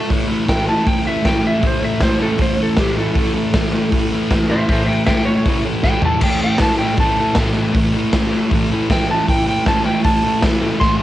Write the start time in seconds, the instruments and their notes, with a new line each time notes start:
0.09 distorted electric guitar A2 E3 A3, kick, open hi-hat
0.27 distorted electric guitar A3
0.32 distorted electric guitar E3
0.46 distorted electric guitar A2 E3, electric slide guitar G5, kick, snare, open hi-hat
0.51 distorted electric guitar A3
0.68 distorted electric guitar E3 A3, electric slide guitar A5
0.86 distorted electric guitar A2 E3 A3, electric slide guitar G5, kick, open hi-hat
1.05 distorted electric guitar A2 E3 A3, electric slide guitar E5
1.23 distorted electric guitar A2 E3 A3, electric slide guitar G5, kick, snare, open hi-hat
1.44 distorted electric guitar E3 A3, electric slide guitar E5
1.62 distorted electric guitar A2 E3 A3, kick, open hi-hat
1.67 electric slide guitar C5
1.82 distorted electric guitar E3 A3, electric slide guitar E5
2.00 distorted electric guitar A2 E3 A3, electric slide guitar C5, kick, snare, open hi-hat
2.20 distorted electric guitar E3 A3, electric slide guitar A4
2.38 distorted electric guitar A2 E3 A3, electric slide guitar C5, kick, open hi-hat
2.58 distorted electric guitar E3 A3
2.62 distorted electric guitar A2, electric slide guitar A4
2.77 distorted electric guitar A2 E3, electric slide guitar G4, kick, snare, open hi-hat
2.83 distorted electric guitar A3
2.97 distorted electric guitar E3 A3, electric slide guitar A4
3.15 distorted electric guitar A2 E3 A3, kick, open hi-hat
3.35 distorted electric guitar E3 A3
3.54 distorted electric guitar A2 E3 A3, kick, snare, open hi-hat
3.73 distorted electric guitar E3 A3
3.91 distorted electric guitar A2 E3 A3, kick, open hi-hat
4.12 distorted electric guitar A2 E3 A3
4.31 distorted electric guitar A2 E3, kick, snare, open hi-hat
4.35 distorted electric guitar A3
4.50 distorted electric guitar E3 A3, electric slide guitar C5 E5
4.68 distorted electric guitar A2 E3 A3, electric slide guitar C5 E5, kick, open hi-hat
4.86 distorted electric guitar A3, electric slide guitar E5 G5
4.91 distorted electric guitar E3
5.06 distorted electric guitar A2 E3, electric slide guitar E5 G5, kick, snare, open hi-hat
5.11 distorted electric guitar A3
5.25 distorted electric guitar E3 A3, electric slide guitar C#5
5.46 distorted electric guitar A2 E3, kick, open hi-hat
5.50 distorted electric guitar A3
5.65 distorted electric guitar A2 E3 A3
5.83 distorted electric guitar A2 E3 A3, electric slide guitar G5, kick, snare
6.02 distorted electric guitar A3, electric slide guitar A5, floor tom
6.06 distorted electric guitar E3
6.21 distorted electric guitar A2 E3, electric slide guitar G5, kick, crash
6.25 distorted electric guitar A3
6.42 distorted electric guitar E3 A3, electric slide guitar G5
6.58 distorted electric guitar A2, electric slide guitar A5, kick, snare, open hi-hat
6.62 distorted electric guitar E3 A3
6.79 distorted electric guitar E3 A3, electric slide guitar G5
6.97 distorted electric guitar A2 E3, electric slide guitar A5, kick, open hi-hat
7.02 distorted electric guitar A3
7.18 distorted electric guitar A2 E3 A3
7.35 distorted electric guitar A2 E3, kick, snare, open hi-hat
7.39 distorted electric guitar A3
7.54 distorted electric guitar E3 A3
7.73 distorted electric guitar A2 E3 A3, kick, open hi-hat
7.93 distorted electric guitar E3 A3
8.13 distorted electric guitar A2 E3 A3, kick, snare, open hi-hat
8.32 distorted electric guitar A3
8.36 distorted electric guitar E3
8.51 distorted electric guitar A2 E3 A3, kick, open hi-hat
8.71 distorted electric guitar A2 E3 A3
8.90 distorted electric guitar A2 E3 A3, electric slide guitar G5, kick, snare, open hi-hat
9.08 distorted electric guitar E3 A3, electric slide guitar A5
9.27 distorted electric guitar A2 E3 A3, electric slide guitar G5, kick, open hi-hat
9.46 distorted electric guitar E3 A3, electric slide guitar G5
9.66 distorted electric guitar A2 E3 A3, electric slide guitar A5, kick, snare, open hi-hat
9.85 distorted electric guitar E3 A3, electric slide guitar G5
10.04 distorted electric guitar A2 E3 A3, electric slide guitar A5, kick, open hi-hat
10.24 distorted electric guitar A2 E3 A3
10.42 distorted electric guitar A2 E3 A3, kick, snare, open hi-hat
10.62 distorted electric guitar E3 A3
10.80 distorted electric guitar A2 E3 A3, electric slide guitar C6, kick, snare